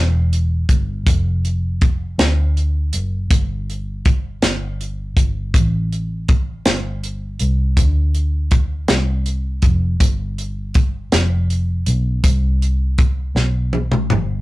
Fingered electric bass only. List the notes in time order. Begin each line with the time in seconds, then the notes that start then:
Already playing: E1
0.69 G1
1.07 F1
2.18 D2
2.94 F#1
3.31 G1
4.43 G1
5.17 G1
5.54 A1
6.66 G1
7.41 C2
7.77 D2
8.88 C2
9.62 F1
10.00 G1
11.12 F1
11.87 B1
12.24 C2
13.35 B1
14.11 G1